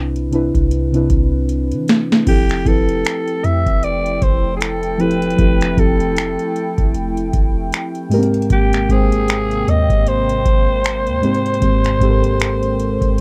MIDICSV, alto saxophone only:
0, 0, Header, 1, 2, 480
1, 0, Start_track
1, 0, Tempo, 779221
1, 1398, Time_signature, 4, 2, 24, 8
1, 8137, End_track
2, 0, Start_track
2, 0, Title_t, "Alto saxophone"
2, 0, Program_c, 0, 65
2, 1407, Note_on_c, 0, 67, 96
2, 1648, Note_on_c, 0, 69, 94
2, 1657, Note_off_c, 0, 67, 0
2, 2124, Note_on_c, 0, 76, 98
2, 2133, Note_off_c, 0, 69, 0
2, 2365, Note_on_c, 0, 74, 99
2, 2374, Note_off_c, 0, 76, 0
2, 2604, Note_on_c, 0, 72, 89
2, 2614, Note_off_c, 0, 74, 0
2, 2805, Note_off_c, 0, 72, 0
2, 2813, Note_on_c, 0, 68, 65
2, 2840, Note_on_c, 0, 69, 90
2, 2849, Note_off_c, 0, 68, 0
2, 3083, Note_on_c, 0, 71, 96
2, 3092, Note_off_c, 0, 69, 0
2, 3567, Note_on_c, 0, 69, 86
2, 3576, Note_off_c, 0, 71, 0
2, 4283, Note_off_c, 0, 69, 0
2, 5249, Note_on_c, 0, 67, 96
2, 5491, Note_on_c, 0, 68, 99
2, 5500, Note_off_c, 0, 67, 0
2, 5972, Note_on_c, 0, 75, 114
2, 5981, Note_off_c, 0, 68, 0
2, 6210, Note_on_c, 0, 72, 105
2, 6219, Note_off_c, 0, 75, 0
2, 8137, Note_off_c, 0, 72, 0
2, 8137, End_track
0, 0, End_of_file